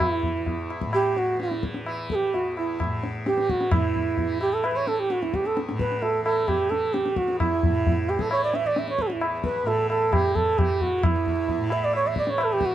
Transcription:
0.00 0.33 E2 medium
0.00 0.83 A2 medium
0.00 1.34 E3 medium
0.00 0.71 E4 medium
0.00 tabla na loud
0.00 tabla ge medium
0.23 tabla ge medium
0.33 2.33 E2 medium
0.46 tabla tin medium
0.46 tabla ge medium
0.70 tabla na medium
0.81 2.83 A2 medium
0.81 tabla ke medium
0.93 1.19 G4 loud
0.93 tabla na medium
1.16 1.41 F#4 medium
1.16 tabla te medium
1.34 1.84 E3 medium
1.40 1.63 E4 medium
1.40 tabla te medium
1.51 tabla te medium
1.63 tabla ke medium
1.74 tabla te medium
1.84 3.33 E3 medium
1.84 tabla na medium
2.10 2.16 A4 medium
2.10 tabla ke medium
2.15 2.36 G4 loud
2.34 5.21 E2 medium
2.34 2.57 F#4 medium
2.34 tabla tin medium
2.57 2.79 E4 medium
2.57 tabla na medium
2.80 3.72 A2 medium
2.80 tabla na medium
2.80 tabla ge medium
3.03 tabla te medium
3.26 3.52 G4 loud
3.26 tabla te medium
3.33 4.21 E3 medium
3.38 tabla te medium
3.50 3.73 F#4 medium
3.50 tabla ke medium
3.61 tabla te medium
3.71 5.70 A2 medium
3.71 4.38 E4 loud
3.71 tabla na loud
3.71 tabla ge loud
3.95 tabla ge medium
4.17 tabla tin medium
4.17 tabla ge medium
4.21 4.72 E3 medium
4.41 4.55 G4 loud
4.41 tabla na medium
4.53 4.66 A4 medium
4.64 4.78 B4 loud
4.64 tabla na medium
4.72 6.20 E3 medium
4.76 4.89 C#5 medium
4.87 4.97 A4 medium
4.87 tabla te medium
4.97 5.13 G4 medium
4.97 5.01 A4 medium
5.10 5.24 F#4 medium
5.10 tabla te medium
5.22 7.18 E2 medium
5.22 5.36 E4 medium
5.22 tabla te medium
5.34 5.48 G4 medium
5.34 tabla ke medium
5.45 5.57 A4 medium
5.45 tabla te medium
5.57 tabla te medium
5.69 7.66 A2 medium
5.69 tabla te medium
5.79 6.04 B4 medium
5.79 tabla ke medium
5.92 tabla te medium
6.02 6.24 A4 medium
6.02 tabla tin medium
6.20 6.67 E3 medium
6.24 6.49 A4 medium
6.24 tabla na medium
6.48 6.71 G4 medium
6.48 tabla na medium
6.48 tabla ge medium
6.67 8.15 E3 medium
6.67 6.95 A4 medium
6.72 tabla te medium
6.93 7.18 G4 medium
6.93 tabla te medium
7.06 tabla te medium
7.16 9.14 E2 medium
7.16 7.39 F#4 medium
7.16 tabla ke medium
7.28 tabla te medium
7.40 8.11 E4 loud
7.40 tabla na loud
7.40 tabla ge loud
7.63 9.63 A2 medium
7.63 tabla ge medium
7.86 tabla tin medium
7.86 tabla ge medium
8.09 8.23 G4 loud
8.09 tabla na medium
8.15 8.65 E3 medium
8.15 tabla ke medium
8.21 8.31 A4 medium
8.31 8.42 C#5 loud
8.31 tabla na medium
8.44 8.57 D5 loud
8.54 8.68 E5 loud
8.54 tabla te medium
8.65 10.10 E3 medium
8.65 8.80 D5 medium
8.76 8.89 E5 loud
8.76 tabla te medium
8.88 9.03 C#5 loud
8.88 tabla te medium
8.99 9.09 A4 medium
8.99 tabla ke medium
9.07 9.14 F#4 medium
9.07 tabla te medium
9.13 11.07 E2 medium
9.13 9.23 E4 medium
9.21 tabla na medium
9.44 9.69 B4 medium
9.44 tabla ke medium
9.63 11.57 A2 medium
9.63 9.89 A4 medium
9.63 tabla tin medium
9.90 10.14 A4 loud
9.90 tabla na medium
10.10 10.60 E3 medium
10.10 10.37 G4 loud
10.10 tabla na medium
10.10 tabla ge medium
10.35 10.60 A4 medium
10.35 tabla ge medium
10.58 12.05 E3 medium
10.58 10.83 G4 medium
10.58 tabla na medium
10.58 tabla ge medium
10.81 11.05 F#4 medium
10.81 tabla ge medium
11.03 11.74 E4 loud
11.03 tabla na loud
11.03 tabla ge loud
11.08 12.75 E2 medium
11.26 tabla ge medium
11.48 tabla tin medium
11.48 tabla ge medium
11.58 12.75 A2 medium
11.70 11.86 E5 loud
11.70 tabla na medium
11.84 11.95 D5 loud
11.93 12.09 C#5 loud
11.93 tabla na medium
12.05 12.55 E3 medium
12.05 12.17 E5 loud
12.16 12.26 D5 medium
12.16 tabla ke medium
12.26 12.31 D5 medium
12.26 tabla te medium
12.30 12.43 C#5 medium
12.38 12.54 A4 loud
12.38 tabla na medium
12.53 12.75 E3 medium
12.53 12.67 G4 loud
12.61 tabla ke medium
12.66 12.75 F#4 medium

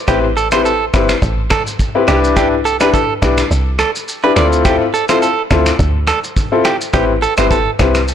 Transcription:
0.08 0.90 A1 loud
0.08 0.24 C4 medium
0.08 0.25 E4 medium
0.08 0.25 G4 medium
0.08 0.19 G4 medium
0.08 0.25 B4 loud
0.08 finger snap medium
0.08 kick loud
0.08 cross-stick medium
0.08 shaker medium
0.37 0.47 A4 medium
0.37 shaker soft
0.52 0.66 C4 medium
0.52 0.66 E4 medium
0.52 0.66 G4 medium
0.52 0.66 B4 medium
0.52 0.61 C5 medium
0.52 finger snap medium
0.52 cross-stick loud
0.52 shaker medium
0.65 0.85 A4 medium
0.65 shaker medium
0.93 1.15 G1 medium
0.93 1.10 C4 medium
0.93 1.10 E4 medium
0.93 1.10 G4 medium
0.93 1.11 B4 medium
0.93 finger snap medium
0.93 kick medium
0.93 cross-stick loud
0.93 shaker medium
1.09 finger snap medium
1.09 cross-stick medium
1.09 shaker medium
1.22 1.55 A1 loud
1.22 kick medium
1.22 shaker medium
1.50 1.62 A4 medium
1.50 finger snap medium
1.50 kick medium
1.50 cross-stick medium
1.50 shaker soft
1.67 shaker medium
1.79 kick medium
1.79 shaker medium
1.95 2.09 C4 medium
1.95 2.06 E4 medium
1.95 2.07 G4 medium
1.95 2.07 B4 medium
2.08 2.93 C2 loud
2.08 2.34 D4 medium
2.08 2.35 E4 medium
2.08 2.19 G4 medium
2.08 2.35 G4 medium
2.08 2.35 B4 loud
2.08 finger snap medium
2.08 cross-stick medium
2.08 shaker medium
2.24 shaker medium
2.36 2.53 D4 medium
2.36 2.53 E4 medium
2.36 2.53 G4 medium
2.36 2.47 G4 loud
2.36 2.53 B4 medium
2.36 finger snap medium
2.36 kick loud
2.36 cross-stick medium
2.36 shaker medium
2.65 2.76 A4 medium
2.65 shaker medium
2.80 2.95 D4 medium
2.80 2.95 E4 medium
2.80 2.95 G4 medium
2.80 2.90 B4 medium
2.80 2.95 B4 medium
2.80 finger snap medium
2.80 cross-stick loud
2.80 shaker medium
2.94 3.13 A4 medium
2.94 kick loud
2.94 shaker medium
3.22 3.44 B1 medium
3.22 3.39 D4 medium
3.22 3.39 E4 medium
3.22 3.39 G4 medium
3.22 3.39 B4 medium
3.22 finger snap medium
3.22 kick medium
3.22 cross-stick medium
3.22 shaker medium
3.38 finger snap medium
3.38 cross-stick medium
3.38 shaker medium
3.51 3.84 C2 loud
3.51 shaker medium
3.79 3.90 A4 medium
3.79 finger snap medium
3.79 cross-stick medium
3.79 shaker soft
3.95 shaker medium
4.08 shaker medium
4.24 4.38 D4 medium
4.24 4.35 E4 medium
4.24 4.38 G4 medium
4.24 4.32 B4 medium
4.24 4.38 B4 medium
4.36 4.79 D2 loud
4.36 4.63 C4 medium
4.36 4.63 E4 medium
4.36 4.63 F4 medium
4.36 4.63 A4 loud
4.36 4.47 D5 medium
4.36 finger snap medium
4.36 cross-stick medium
4.36 shaker medium
4.53 shaker medium
4.65 4.82 C4 medium
4.65 4.82 E4 medium
4.65 4.82 F4 medium
4.65 4.76 G4 medium
4.65 4.82 A4 medium
4.65 finger snap medium
4.65 kick loud
4.65 cross-stick medium
4.65 shaker medium
4.94 5.04 A4 medium
4.94 shaker soft
5.09 5.23 C4 medium
5.09 5.23 E4 medium
5.09 5.23 F4 medium
5.09 5.24 A4 medium
5.09 5.18 C5 medium
5.09 finger snap medium
5.09 cross-stick loud
5.09 shaker medium
5.22 5.42 A4 medium
5.22 shaker medium
5.50 5.72 D2 medium
5.50 5.67 C4 medium
5.50 5.67 E4 medium
5.50 5.68 F4 medium
5.50 5.68 A4 medium
5.50 finger snap medium
5.50 kick medium
5.50 cross-stick loud
5.50 shaker soft
5.66 finger snap medium
5.66 cross-stick medium
5.66 shaker medium
5.79 6.12 D2 loud
5.79 kick medium
5.79 shaker medium
6.07 6.19 A4 medium
6.07 finger snap medium
6.07 cross-stick medium
6.07 shaker soft
6.24 shaker medium
6.37 kick loud
6.37 shaker medium
6.52 6.66 C4 medium
6.52 6.66 E4 medium
6.52 6.66 F4 medium
6.52 6.66 A4 medium
6.65 6.76 G4 medium
6.65 finger snap medium
6.65 cross-stick medium
6.65 shaker medium
6.81 shaker medium
6.93 7.27 A1 loud
6.93 7.10 C4 medium
6.93 7.10 E4 medium
6.93 7.10 G4 medium
6.93 7.04 G4 loud
6.93 7.10 B4 medium
6.93 finger snap medium
6.93 kick loud
6.93 cross-stick medium
6.93 shaker medium
7.22 7.33 A4 medium
7.22 shaker soft
7.37 7.69 G1 medium
7.37 7.52 C4 medium
7.37 7.52 E4 medium
7.37 7.52 G4 medium
7.37 7.52 B4 medium
7.37 7.47 C5 medium
7.37 finger snap medium
7.37 cross-stick loud
7.37 shaker medium
7.51 7.70 A4 medium
7.51 kick loud
7.51 shaker medium
7.79 8.12 C2 loud
7.79 7.96 C4 medium
7.79 7.96 E4 medium
7.79 7.96 G4 medium
7.79 7.96 B4 medium
7.79 finger snap medium
7.79 kick medium
7.79 cross-stick loud
7.79 shaker medium
7.95 finger snap medium
7.95 cross-stick medium
7.95 shaker medium
8.08 shaker medium

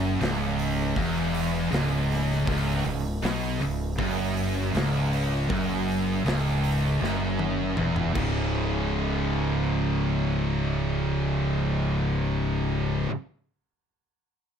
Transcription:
0.00 0.17 F#1 loud
0.00 0.20 F#2 loud
0.21 0.93 C#1 loud
0.21 0.96 C#2 loud
0.21 snare loud
0.21 open hi-hat medium
0.59 open hi-hat medium
0.96 1.68 E1 loud
0.96 1.71 E2 loud
0.96 kick loud
0.96 open hi-hat medium
1.34 open hi-hat medium
1.72 2.44 C#1 loud
1.72 2.45 C#2 loud
1.72 snare loud
1.72 open hi-hat medium
2.11 snare soft
2.11 open hi-hat medium
2.32 snare soft
2.46 2.83 C#1 loud
2.46 2.84 C#2 loud
2.46 kick loud
2.46 open hi-hat loud
2.85 3.20 C#1 medium
2.85 3.15 C#2 medium
2.85 open hi-hat medium
3.22 3.58 B1 loud
3.22 3.59 B2 loud
3.22 snare loud
3.22 open hi-hat medium
3.59 3.96 C#1 medium
3.59 3.90 C#2 medium
3.59 open hi-hat medium
3.98 4.70 F#1 loud
3.98 4.72 F#2 loud
3.98 kick loud
3.98 open hi-hat loud
4.37 open hi-hat medium
4.74 5.46 C#1 loud
4.74 5.48 C#2 loud
4.74 snare loud
4.74 open hi-hat medium
5.13 open hi-hat medium
5.50 6.22 F#1 loud
5.50 6.24 F#2 loud
5.50 kick loud
5.50 open hi-hat medium
5.88 open hi-hat medium
6.25 6.97 C#1 medium
6.25 7.00 C#2 loud
6.25 snare loud
6.25 open hi-hat medium
6.64 open hi-hat medium
7.01 7.74 F#1 loud
7.01 7.76 F#2 loud
7.01 snare medium
7.39 high tom medium
7.77 8.13 E1 loud
7.77 8.13 E2 loud
7.77 mid tom loud
7.96 mid tom medium
8.13 13.05 C#1 loud
8.13 13.08 C#2 loud
8.13 13.09 G#2 loud
8.13 13.10 C#3 loud
8.13 kick loud
8.13 crash medium

